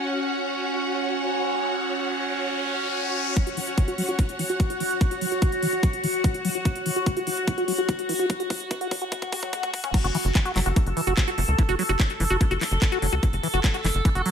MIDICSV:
0, 0, Header, 1, 8, 480
1, 0, Start_track
1, 0, Key_signature, 3, "minor"
1, 0, Tempo, 410959
1, 91, Time_signature, 4, 2, 24, 8
1, 16715, End_track
2, 0, Start_track
2, 0, Title_t, "String section"
2, 0, Program_c, 0, 48
2, 0, Note_on_c, 0, 66, 83
2, 0, Note_on_c, 0, 73, 80
2, 0, Note_on_c, 0, 78, 86
2, 11610, Note_off_c, 0, 66, 0
2, 11611, Note_off_c, 0, 73, 0
2, 11611, Note_off_c, 0, 78, 0
2, 16715, End_track
3, 0, Start_track
3, 0, Title_t, "Synth drone"
3, 0, Program_c, 1, 95
3, 0, Note_on_c, 1, 61, 81
3, 3930, Note_on_c, 1, 66, 83
3, 3940, Note_off_c, 1, 61, 0
3, 11610, Note_on_c, 1, 69, 84
3, 11620, Note_off_c, 1, 66, 0
3, 16715, Note_off_c, 1, 69, 0
3, 16715, End_track
4, 0, Start_track
4, 0, Title_t, "Acid bass"
4, 0, Program_c, 2, 38
4, 3930, Note_on_c, 2, 54, 85
4, 3981, Note_off_c, 2, 54, 0
4, 4050, Note_on_c, 2, 66, 98
4, 4081, Note_off_c, 2, 66, 0
4, 4170, Note_on_c, 2, 52, 78
4, 4201, Note_off_c, 2, 52, 0
4, 4410, Note_on_c, 2, 52, 85
4, 4461, Note_off_c, 2, 52, 0
4, 4530, Note_on_c, 2, 66, 103
4, 4606, Note_off_c, 2, 66, 0
4, 4650, Note_on_c, 2, 54, 78
4, 4701, Note_off_c, 2, 54, 0
4, 4770, Note_on_c, 2, 66, 104
4, 4801, Note_off_c, 2, 66, 0
4, 4890, Note_on_c, 2, 52, 84
4, 4921, Note_off_c, 2, 52, 0
4, 5130, Note_on_c, 2, 52, 79
4, 5181, Note_off_c, 2, 52, 0
4, 5250, Note_on_c, 2, 66, 104
4, 5327, Note_off_c, 2, 66, 0
4, 5371, Note_on_c, 2, 54, 81
4, 5421, Note_off_c, 2, 54, 0
4, 5491, Note_on_c, 2, 66, 98
4, 5521, Note_off_c, 2, 66, 0
4, 5611, Note_on_c, 2, 52, 79
4, 5641, Note_off_c, 2, 52, 0
4, 5851, Note_on_c, 2, 52, 83
4, 5901, Note_off_c, 2, 52, 0
4, 5971, Note_on_c, 2, 66, 100
4, 6047, Note_off_c, 2, 66, 0
4, 6091, Note_on_c, 2, 54, 78
4, 6142, Note_off_c, 2, 54, 0
4, 6211, Note_on_c, 2, 66, 102
4, 6241, Note_off_c, 2, 66, 0
4, 6331, Note_on_c, 2, 52, 83
4, 6361, Note_off_c, 2, 52, 0
4, 6571, Note_on_c, 2, 52, 78
4, 6622, Note_off_c, 2, 52, 0
4, 6690, Note_on_c, 2, 66, 101
4, 6767, Note_off_c, 2, 66, 0
4, 6811, Note_on_c, 2, 54, 78
4, 6862, Note_off_c, 2, 54, 0
4, 6931, Note_on_c, 2, 66, 98
4, 6961, Note_off_c, 2, 66, 0
4, 7051, Note_on_c, 2, 52, 78
4, 7081, Note_off_c, 2, 52, 0
4, 7291, Note_on_c, 2, 52, 85
4, 7342, Note_off_c, 2, 52, 0
4, 7411, Note_on_c, 2, 66, 99
4, 7487, Note_off_c, 2, 66, 0
4, 7531, Note_on_c, 2, 54, 79
4, 7581, Note_off_c, 2, 54, 0
4, 7651, Note_on_c, 2, 66, 100
4, 7681, Note_off_c, 2, 66, 0
4, 7771, Note_on_c, 2, 52, 81
4, 7801, Note_off_c, 2, 52, 0
4, 8010, Note_on_c, 2, 52, 77
4, 8061, Note_off_c, 2, 52, 0
4, 8130, Note_on_c, 2, 66, 105
4, 8207, Note_off_c, 2, 66, 0
4, 8250, Note_on_c, 2, 54, 85
4, 8301, Note_off_c, 2, 54, 0
4, 8370, Note_on_c, 2, 66, 105
4, 8401, Note_off_c, 2, 66, 0
4, 8490, Note_on_c, 2, 52, 76
4, 8521, Note_off_c, 2, 52, 0
4, 8730, Note_on_c, 2, 52, 84
4, 8781, Note_off_c, 2, 52, 0
4, 8850, Note_on_c, 2, 66, 100
4, 8926, Note_off_c, 2, 66, 0
4, 8970, Note_on_c, 2, 54, 80
4, 9021, Note_off_c, 2, 54, 0
4, 9090, Note_on_c, 2, 66, 101
4, 9121, Note_off_c, 2, 66, 0
4, 9210, Note_on_c, 2, 52, 86
4, 9241, Note_off_c, 2, 52, 0
4, 9450, Note_on_c, 2, 52, 81
4, 9501, Note_off_c, 2, 52, 0
4, 9570, Note_on_c, 2, 66, 100
4, 9647, Note_off_c, 2, 66, 0
4, 9690, Note_on_c, 2, 54, 88
4, 9741, Note_off_c, 2, 54, 0
4, 9810, Note_on_c, 2, 66, 99
4, 9841, Note_off_c, 2, 66, 0
4, 9930, Note_on_c, 2, 52, 77
4, 9961, Note_off_c, 2, 52, 0
4, 10170, Note_on_c, 2, 52, 85
4, 10221, Note_off_c, 2, 52, 0
4, 10289, Note_on_c, 2, 66, 105
4, 10366, Note_off_c, 2, 66, 0
4, 10410, Note_on_c, 2, 54, 79
4, 10461, Note_off_c, 2, 54, 0
4, 10530, Note_on_c, 2, 66, 105
4, 10561, Note_off_c, 2, 66, 0
4, 10649, Note_on_c, 2, 52, 85
4, 10680, Note_off_c, 2, 52, 0
4, 10889, Note_on_c, 2, 67, 81
4, 10941, Note_off_c, 2, 67, 0
4, 11010, Note_on_c, 2, 54, 78
4, 11130, Note_on_c, 2, 57, 105
4, 11147, Note_off_c, 2, 54, 0
4, 11370, Note_on_c, 2, 54, 100
4, 11387, Note_off_c, 2, 57, 0
4, 11446, Note_off_c, 2, 54, 0
4, 11489, Note_on_c, 2, 61, 98
4, 11566, Note_off_c, 2, 61, 0
4, 11610, Note_on_c, 2, 54, 84
4, 11661, Note_off_c, 2, 54, 0
4, 11730, Note_on_c, 2, 66, 104
4, 11761, Note_off_c, 2, 66, 0
4, 11850, Note_on_c, 2, 52, 79
4, 11881, Note_off_c, 2, 52, 0
4, 12090, Note_on_c, 2, 52, 86
4, 12141, Note_off_c, 2, 52, 0
4, 12211, Note_on_c, 2, 66, 105
4, 12287, Note_off_c, 2, 66, 0
4, 12330, Note_on_c, 2, 54, 77
4, 12381, Note_off_c, 2, 54, 0
4, 12450, Note_on_c, 2, 66, 101
4, 12481, Note_off_c, 2, 66, 0
4, 12570, Note_on_c, 2, 52, 83
4, 12601, Note_off_c, 2, 52, 0
4, 12810, Note_on_c, 2, 52, 78
4, 12861, Note_off_c, 2, 52, 0
4, 12930, Note_on_c, 2, 66, 106
4, 13007, Note_off_c, 2, 66, 0
4, 13051, Note_on_c, 2, 54, 86
4, 13101, Note_off_c, 2, 54, 0
4, 13170, Note_on_c, 2, 66, 102
4, 13201, Note_off_c, 2, 66, 0
4, 13291, Note_on_c, 2, 52, 80
4, 13321, Note_off_c, 2, 52, 0
4, 13530, Note_on_c, 2, 52, 87
4, 13581, Note_off_c, 2, 52, 0
4, 13651, Note_on_c, 2, 66, 100
4, 13727, Note_off_c, 2, 66, 0
4, 13771, Note_on_c, 2, 54, 79
4, 13821, Note_off_c, 2, 54, 0
4, 13890, Note_on_c, 2, 66, 105
4, 13921, Note_off_c, 2, 66, 0
4, 14010, Note_on_c, 2, 52, 86
4, 14041, Note_off_c, 2, 52, 0
4, 14250, Note_on_c, 2, 52, 76
4, 14301, Note_off_c, 2, 52, 0
4, 14370, Note_on_c, 2, 66, 105
4, 14447, Note_off_c, 2, 66, 0
4, 14490, Note_on_c, 2, 54, 80
4, 14541, Note_off_c, 2, 54, 0
4, 14611, Note_on_c, 2, 66, 106
4, 14641, Note_off_c, 2, 66, 0
4, 14730, Note_on_c, 2, 52, 81
4, 14761, Note_off_c, 2, 52, 0
4, 14970, Note_on_c, 2, 52, 87
4, 15021, Note_off_c, 2, 52, 0
4, 15090, Note_on_c, 2, 66, 100
4, 15167, Note_off_c, 2, 66, 0
4, 15210, Note_on_c, 2, 54, 77
4, 15261, Note_off_c, 2, 54, 0
4, 15331, Note_on_c, 2, 66, 98
4, 15361, Note_off_c, 2, 66, 0
4, 15451, Note_on_c, 2, 52, 86
4, 15481, Note_off_c, 2, 52, 0
4, 15690, Note_on_c, 2, 52, 79
4, 15741, Note_off_c, 2, 52, 0
4, 15810, Note_on_c, 2, 66, 101
4, 15887, Note_off_c, 2, 66, 0
4, 15930, Note_on_c, 2, 54, 86
4, 15981, Note_off_c, 2, 54, 0
4, 16050, Note_on_c, 2, 66, 104
4, 16081, Note_off_c, 2, 66, 0
4, 16171, Note_on_c, 2, 52, 76
4, 16201, Note_off_c, 2, 52, 0
4, 16410, Note_on_c, 2, 52, 83
4, 16461, Note_off_c, 2, 52, 0
4, 16531, Note_on_c, 2, 66, 103
4, 16607, Note_off_c, 2, 66, 0
4, 16651, Note_on_c, 2, 54, 81
4, 16702, Note_off_c, 2, 54, 0
4, 16715, End_track
5, 0, Start_track
5, 0, Title_t, "Analog synth bass"
5, 0, Program_c, 3, 38
5, 11731, Note_on_c, 3, 30, 80
5, 11813, Note_off_c, 3, 30, 0
5, 11970, Note_on_c, 3, 30, 83
5, 12053, Note_off_c, 3, 30, 0
5, 12331, Note_on_c, 3, 30, 103
5, 12413, Note_off_c, 3, 30, 0
5, 12451, Note_on_c, 3, 30, 82
5, 12533, Note_off_c, 3, 30, 0
5, 12691, Note_on_c, 3, 30, 80
5, 12773, Note_off_c, 3, 30, 0
5, 12931, Note_on_c, 3, 30, 83
5, 13014, Note_off_c, 3, 30, 0
5, 13291, Note_on_c, 3, 30, 95
5, 13373, Note_off_c, 3, 30, 0
5, 13411, Note_on_c, 3, 37, 85
5, 13494, Note_off_c, 3, 37, 0
5, 13651, Note_on_c, 3, 30, 76
5, 13734, Note_off_c, 3, 30, 0
5, 13891, Note_on_c, 3, 30, 81
5, 13974, Note_off_c, 3, 30, 0
5, 14251, Note_on_c, 3, 30, 100
5, 14333, Note_off_c, 3, 30, 0
5, 14371, Note_on_c, 3, 30, 82
5, 14454, Note_off_c, 3, 30, 0
5, 14611, Note_on_c, 3, 30, 76
5, 14694, Note_off_c, 3, 30, 0
5, 14851, Note_on_c, 3, 30, 86
5, 14934, Note_off_c, 3, 30, 0
5, 15211, Note_on_c, 3, 30, 92
5, 15294, Note_off_c, 3, 30, 0
5, 15331, Note_on_c, 3, 37, 82
5, 15414, Note_off_c, 3, 37, 0
5, 15571, Note_on_c, 3, 30, 79
5, 15654, Note_off_c, 3, 30, 0
5, 15811, Note_on_c, 3, 30, 81
5, 15893, Note_off_c, 3, 30, 0
5, 16170, Note_on_c, 3, 30, 101
5, 16253, Note_off_c, 3, 30, 0
5, 16291, Note_on_c, 3, 30, 81
5, 16373, Note_off_c, 3, 30, 0
5, 16531, Note_on_c, 3, 30, 78
5, 16614, Note_off_c, 3, 30, 0
5, 16715, End_track
6, 0, Start_track
6, 0, Title_t, "Riser"
6, 0, Program_c, 4, 103
6, 91, Note_on_c, 4, 60, 76
6, 3931, Note_off_c, 4, 60, 0
6, 16715, End_track
7, 0, Start_track
7, 0, Title_t, "Swell"
7, 0, Program_c, 5, 103
7, 10650, Note_on_c, 5, 60, 76
7, 11611, Note_off_c, 5, 60, 0
7, 16715, End_track
8, 0, Start_track
8, 0, Title_t, "Drums"
8, 3930, Note_on_c, 9, 36, 120
8, 3930, Note_on_c, 9, 42, 85
8, 4047, Note_off_c, 9, 36, 0
8, 4047, Note_off_c, 9, 42, 0
8, 4050, Note_on_c, 9, 42, 54
8, 4167, Note_off_c, 9, 42, 0
8, 4170, Note_on_c, 9, 46, 101
8, 4287, Note_off_c, 9, 46, 0
8, 4290, Note_on_c, 9, 42, 55
8, 4407, Note_off_c, 9, 42, 0
8, 4410, Note_on_c, 9, 36, 118
8, 4410, Note_on_c, 9, 42, 80
8, 4527, Note_off_c, 9, 36, 0
8, 4527, Note_off_c, 9, 42, 0
8, 4530, Note_on_c, 9, 42, 55
8, 4647, Note_off_c, 9, 42, 0
8, 4651, Note_on_c, 9, 46, 102
8, 4767, Note_off_c, 9, 46, 0
8, 4770, Note_on_c, 9, 42, 54
8, 4887, Note_off_c, 9, 42, 0
8, 4890, Note_on_c, 9, 36, 123
8, 4891, Note_on_c, 9, 42, 83
8, 5007, Note_off_c, 9, 36, 0
8, 5007, Note_off_c, 9, 42, 0
8, 5010, Note_on_c, 9, 42, 54
8, 5127, Note_off_c, 9, 42, 0
8, 5130, Note_on_c, 9, 46, 106
8, 5247, Note_off_c, 9, 46, 0
8, 5251, Note_on_c, 9, 42, 52
8, 5367, Note_off_c, 9, 42, 0
8, 5370, Note_on_c, 9, 42, 82
8, 5371, Note_on_c, 9, 36, 122
8, 5487, Note_off_c, 9, 36, 0
8, 5487, Note_off_c, 9, 42, 0
8, 5490, Note_on_c, 9, 42, 56
8, 5607, Note_off_c, 9, 42, 0
8, 5611, Note_on_c, 9, 46, 108
8, 5727, Note_off_c, 9, 46, 0
8, 5731, Note_on_c, 9, 42, 57
8, 5847, Note_off_c, 9, 42, 0
8, 5850, Note_on_c, 9, 42, 79
8, 5851, Note_on_c, 9, 36, 127
8, 5967, Note_off_c, 9, 36, 0
8, 5967, Note_off_c, 9, 42, 0
8, 5970, Note_on_c, 9, 42, 54
8, 6087, Note_off_c, 9, 42, 0
8, 6090, Note_on_c, 9, 46, 110
8, 6207, Note_off_c, 9, 46, 0
8, 6210, Note_on_c, 9, 42, 54
8, 6327, Note_off_c, 9, 42, 0
8, 6330, Note_on_c, 9, 42, 79
8, 6331, Note_on_c, 9, 36, 124
8, 6447, Note_off_c, 9, 36, 0
8, 6447, Note_off_c, 9, 42, 0
8, 6450, Note_on_c, 9, 42, 53
8, 6567, Note_off_c, 9, 42, 0
8, 6570, Note_on_c, 9, 46, 109
8, 6687, Note_off_c, 9, 46, 0
8, 6690, Note_on_c, 9, 42, 53
8, 6807, Note_off_c, 9, 42, 0
8, 6810, Note_on_c, 9, 42, 80
8, 6811, Note_on_c, 9, 36, 127
8, 6927, Note_off_c, 9, 36, 0
8, 6927, Note_off_c, 9, 42, 0
8, 6930, Note_on_c, 9, 42, 51
8, 7047, Note_off_c, 9, 42, 0
8, 7050, Note_on_c, 9, 46, 113
8, 7167, Note_off_c, 9, 46, 0
8, 7170, Note_on_c, 9, 42, 53
8, 7287, Note_off_c, 9, 42, 0
8, 7290, Note_on_c, 9, 42, 77
8, 7291, Note_on_c, 9, 36, 123
8, 7407, Note_off_c, 9, 36, 0
8, 7407, Note_off_c, 9, 42, 0
8, 7410, Note_on_c, 9, 42, 54
8, 7527, Note_off_c, 9, 42, 0
8, 7530, Note_on_c, 9, 46, 108
8, 7647, Note_off_c, 9, 46, 0
8, 7650, Note_on_c, 9, 42, 51
8, 7767, Note_off_c, 9, 42, 0
8, 7770, Note_on_c, 9, 42, 77
8, 7771, Note_on_c, 9, 36, 103
8, 7887, Note_off_c, 9, 36, 0
8, 7887, Note_off_c, 9, 42, 0
8, 7890, Note_on_c, 9, 42, 51
8, 8007, Note_off_c, 9, 42, 0
8, 8010, Note_on_c, 9, 46, 115
8, 8127, Note_off_c, 9, 46, 0
8, 8130, Note_on_c, 9, 42, 52
8, 8247, Note_off_c, 9, 42, 0
8, 8250, Note_on_c, 9, 42, 80
8, 8251, Note_on_c, 9, 36, 106
8, 8367, Note_off_c, 9, 36, 0
8, 8367, Note_off_c, 9, 42, 0
8, 8370, Note_on_c, 9, 42, 53
8, 8487, Note_off_c, 9, 42, 0
8, 8490, Note_on_c, 9, 46, 113
8, 8607, Note_off_c, 9, 46, 0
8, 8611, Note_on_c, 9, 42, 50
8, 8727, Note_off_c, 9, 42, 0
8, 8730, Note_on_c, 9, 36, 108
8, 8730, Note_on_c, 9, 42, 81
8, 8847, Note_off_c, 9, 36, 0
8, 8847, Note_off_c, 9, 42, 0
8, 8850, Note_on_c, 9, 42, 49
8, 8967, Note_off_c, 9, 42, 0
8, 8970, Note_on_c, 9, 46, 112
8, 9087, Note_off_c, 9, 46, 0
8, 9090, Note_on_c, 9, 42, 51
8, 9207, Note_off_c, 9, 42, 0
8, 9210, Note_on_c, 9, 36, 110
8, 9211, Note_on_c, 9, 42, 78
8, 9327, Note_off_c, 9, 36, 0
8, 9327, Note_off_c, 9, 42, 0
8, 9330, Note_on_c, 9, 42, 54
8, 9447, Note_off_c, 9, 42, 0
8, 9450, Note_on_c, 9, 46, 113
8, 9567, Note_off_c, 9, 46, 0
8, 9570, Note_on_c, 9, 42, 54
8, 9687, Note_off_c, 9, 42, 0
8, 9690, Note_on_c, 9, 42, 78
8, 9691, Note_on_c, 9, 36, 106
8, 9807, Note_off_c, 9, 36, 0
8, 9807, Note_off_c, 9, 42, 0
8, 9810, Note_on_c, 9, 42, 52
8, 9927, Note_off_c, 9, 42, 0
8, 9930, Note_on_c, 9, 46, 112
8, 9931, Note_on_c, 9, 36, 105
8, 10047, Note_off_c, 9, 36, 0
8, 10047, Note_off_c, 9, 46, 0
8, 10050, Note_on_c, 9, 42, 52
8, 10167, Note_off_c, 9, 42, 0
8, 10170, Note_on_c, 9, 42, 75
8, 10171, Note_on_c, 9, 36, 107
8, 10287, Note_off_c, 9, 36, 0
8, 10287, Note_off_c, 9, 42, 0
8, 10290, Note_on_c, 9, 42, 53
8, 10407, Note_off_c, 9, 42, 0
8, 10410, Note_on_c, 9, 46, 116
8, 10411, Note_on_c, 9, 36, 108
8, 10527, Note_off_c, 9, 36, 0
8, 10527, Note_off_c, 9, 46, 0
8, 10530, Note_on_c, 9, 42, 49
8, 10647, Note_off_c, 9, 42, 0
8, 10650, Note_on_c, 9, 42, 79
8, 10651, Note_on_c, 9, 36, 112
8, 10767, Note_off_c, 9, 36, 0
8, 10767, Note_off_c, 9, 42, 0
8, 10770, Note_on_c, 9, 42, 50
8, 10771, Note_on_c, 9, 36, 93
8, 10887, Note_off_c, 9, 42, 0
8, 10888, Note_off_c, 9, 36, 0
8, 10890, Note_on_c, 9, 46, 116
8, 10891, Note_on_c, 9, 36, 108
8, 11007, Note_off_c, 9, 46, 0
8, 11008, Note_off_c, 9, 36, 0
8, 11010, Note_on_c, 9, 42, 52
8, 11011, Note_on_c, 9, 36, 94
8, 11127, Note_off_c, 9, 42, 0
8, 11128, Note_off_c, 9, 36, 0
8, 11130, Note_on_c, 9, 42, 78
8, 11131, Note_on_c, 9, 36, 109
8, 11247, Note_off_c, 9, 36, 0
8, 11247, Note_off_c, 9, 42, 0
8, 11251, Note_on_c, 9, 36, 96
8, 11251, Note_on_c, 9, 42, 50
8, 11367, Note_off_c, 9, 42, 0
8, 11368, Note_off_c, 9, 36, 0
8, 11370, Note_on_c, 9, 46, 117
8, 11371, Note_on_c, 9, 36, 108
8, 11487, Note_off_c, 9, 46, 0
8, 11488, Note_off_c, 9, 36, 0
8, 11491, Note_on_c, 9, 36, 97
8, 11491, Note_on_c, 9, 42, 52
8, 11607, Note_off_c, 9, 42, 0
8, 11608, Note_off_c, 9, 36, 0
8, 11611, Note_on_c, 9, 36, 126
8, 11611, Note_on_c, 9, 42, 89
8, 11611, Note_on_c, 9, 49, 108
8, 11728, Note_off_c, 9, 36, 0
8, 11728, Note_off_c, 9, 42, 0
8, 11728, Note_off_c, 9, 49, 0
8, 11731, Note_on_c, 9, 42, 57
8, 11847, Note_off_c, 9, 42, 0
8, 11851, Note_on_c, 9, 46, 109
8, 11967, Note_off_c, 9, 46, 0
8, 11970, Note_on_c, 9, 42, 57
8, 12087, Note_off_c, 9, 42, 0
8, 12090, Note_on_c, 9, 39, 126
8, 12090, Note_on_c, 9, 42, 84
8, 12091, Note_on_c, 9, 36, 122
8, 12207, Note_off_c, 9, 39, 0
8, 12207, Note_off_c, 9, 42, 0
8, 12208, Note_off_c, 9, 36, 0
8, 12211, Note_on_c, 9, 42, 57
8, 12327, Note_off_c, 9, 42, 0
8, 12331, Note_on_c, 9, 39, 64
8, 12331, Note_on_c, 9, 46, 110
8, 12447, Note_off_c, 9, 39, 0
8, 12447, Note_off_c, 9, 46, 0
8, 12451, Note_on_c, 9, 42, 55
8, 12567, Note_off_c, 9, 42, 0
8, 12570, Note_on_c, 9, 42, 84
8, 12571, Note_on_c, 9, 36, 127
8, 12687, Note_off_c, 9, 42, 0
8, 12688, Note_off_c, 9, 36, 0
8, 12691, Note_on_c, 9, 42, 55
8, 12807, Note_off_c, 9, 42, 0
8, 12811, Note_on_c, 9, 46, 105
8, 12927, Note_off_c, 9, 46, 0
8, 12931, Note_on_c, 9, 42, 56
8, 13047, Note_off_c, 9, 42, 0
8, 13051, Note_on_c, 9, 36, 126
8, 13051, Note_on_c, 9, 39, 124
8, 13051, Note_on_c, 9, 42, 84
8, 13167, Note_off_c, 9, 39, 0
8, 13167, Note_off_c, 9, 42, 0
8, 13168, Note_off_c, 9, 36, 0
8, 13171, Note_on_c, 9, 42, 54
8, 13288, Note_off_c, 9, 42, 0
8, 13291, Note_on_c, 9, 46, 110
8, 13407, Note_off_c, 9, 46, 0
8, 13411, Note_on_c, 9, 42, 56
8, 13527, Note_off_c, 9, 42, 0
8, 13531, Note_on_c, 9, 36, 124
8, 13531, Note_on_c, 9, 42, 80
8, 13647, Note_off_c, 9, 42, 0
8, 13648, Note_off_c, 9, 36, 0
8, 13651, Note_on_c, 9, 42, 56
8, 13768, Note_off_c, 9, 42, 0
8, 13771, Note_on_c, 9, 46, 113
8, 13888, Note_off_c, 9, 46, 0
8, 13891, Note_on_c, 9, 42, 55
8, 14008, Note_off_c, 9, 42, 0
8, 14011, Note_on_c, 9, 36, 127
8, 14011, Note_on_c, 9, 39, 127
8, 14011, Note_on_c, 9, 42, 81
8, 14128, Note_off_c, 9, 36, 0
8, 14128, Note_off_c, 9, 39, 0
8, 14128, Note_off_c, 9, 42, 0
8, 14131, Note_on_c, 9, 42, 56
8, 14248, Note_off_c, 9, 42, 0
8, 14251, Note_on_c, 9, 46, 109
8, 14368, Note_off_c, 9, 46, 0
8, 14371, Note_on_c, 9, 42, 54
8, 14488, Note_off_c, 9, 42, 0
8, 14491, Note_on_c, 9, 36, 127
8, 14491, Note_on_c, 9, 42, 85
8, 14608, Note_off_c, 9, 36, 0
8, 14608, Note_off_c, 9, 42, 0
8, 14611, Note_on_c, 9, 42, 53
8, 14728, Note_off_c, 9, 42, 0
8, 14731, Note_on_c, 9, 39, 65
8, 14731, Note_on_c, 9, 46, 112
8, 14848, Note_off_c, 9, 39, 0
8, 14848, Note_off_c, 9, 46, 0
8, 14851, Note_on_c, 9, 42, 54
8, 14968, Note_off_c, 9, 42, 0
8, 14971, Note_on_c, 9, 36, 127
8, 14971, Note_on_c, 9, 39, 123
8, 14971, Note_on_c, 9, 42, 82
8, 15088, Note_off_c, 9, 36, 0
8, 15088, Note_off_c, 9, 39, 0
8, 15088, Note_off_c, 9, 42, 0
8, 15091, Note_on_c, 9, 42, 55
8, 15208, Note_off_c, 9, 42, 0
8, 15211, Note_on_c, 9, 46, 111
8, 15328, Note_off_c, 9, 46, 0
8, 15331, Note_on_c, 9, 42, 57
8, 15448, Note_off_c, 9, 42, 0
8, 15451, Note_on_c, 9, 36, 127
8, 15451, Note_on_c, 9, 42, 82
8, 15568, Note_off_c, 9, 36, 0
8, 15568, Note_off_c, 9, 42, 0
8, 15571, Note_on_c, 9, 42, 52
8, 15688, Note_off_c, 9, 42, 0
8, 15691, Note_on_c, 9, 46, 114
8, 15808, Note_off_c, 9, 46, 0
8, 15811, Note_on_c, 9, 42, 54
8, 15928, Note_off_c, 9, 42, 0
8, 15931, Note_on_c, 9, 36, 127
8, 15931, Note_on_c, 9, 39, 120
8, 15931, Note_on_c, 9, 42, 78
8, 16048, Note_off_c, 9, 36, 0
8, 16048, Note_off_c, 9, 39, 0
8, 16048, Note_off_c, 9, 42, 0
8, 16051, Note_on_c, 9, 42, 54
8, 16168, Note_off_c, 9, 42, 0
8, 16171, Note_on_c, 9, 39, 67
8, 16171, Note_on_c, 9, 46, 115
8, 16288, Note_off_c, 9, 39, 0
8, 16288, Note_off_c, 9, 46, 0
8, 16291, Note_on_c, 9, 42, 52
8, 16408, Note_off_c, 9, 42, 0
8, 16411, Note_on_c, 9, 36, 127
8, 16411, Note_on_c, 9, 42, 78
8, 16528, Note_off_c, 9, 36, 0
8, 16528, Note_off_c, 9, 42, 0
8, 16531, Note_on_c, 9, 42, 51
8, 16648, Note_off_c, 9, 42, 0
8, 16651, Note_on_c, 9, 46, 112
8, 16715, Note_off_c, 9, 46, 0
8, 16715, End_track
0, 0, End_of_file